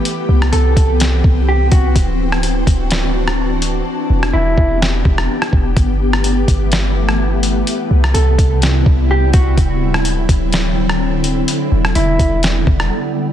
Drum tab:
HH |x---x-x-x-----x-|x---x-x-x-----x-|----------------|x---x-x-x-----x-|
SD |---r----o-------|---r----o--r----|---r----o--r-r--|---r----o--r----|
BD |------o---o---o-|o-----o---------|------o---o---o-|o-----o---------|

HH |x---x-x-x-----x-|x---x-x-x-----x-|x---x-x-x-------|
SD |---r----o-------|---r----o--r----|---r----o--r----|
BD |------o---o---o-|o-----o---------|------o---o-----|